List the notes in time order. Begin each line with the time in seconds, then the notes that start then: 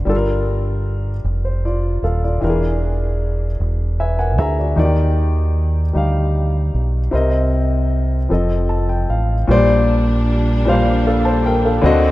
0.05 G1 G3 D4 F4
0.10 A4
0.16 A#4
1.24 F1
1.45 C5
1.65 F4 D5
2.03 D#1 A4 F5
2.24 F4 D5
2.41 E1 E3 D4 G4 A#4
2.49 G#4
3.60 E1
4.00 B4 E5 G#5
4.19 A#4 F#5 G#5
4.38 D2 G#4 E5 A#5
4.59 F#4 D5
4.76 D#2 D#3 D#4 F#4 D5
4.85 G4
5.93 D2 G3 D#4 G4 F5
6.74 B1
7.11 C2 C3 C4 A#4 D#5
8.29 F1 F3 C4 A4
8.33 D#5
8.69 A5
8.89 G5
9.09 A1 F5
9.47 A#1 A#2 G3 A#3 D4 C5 D5
10.65 A#2 G3 C5 F5
11.07 A4 F5
11.25 C5 A5
11.46 A#4 G5
11.65 A4 F5
11.81 D2 D3 C4 D#4 F#4
11.86 D#5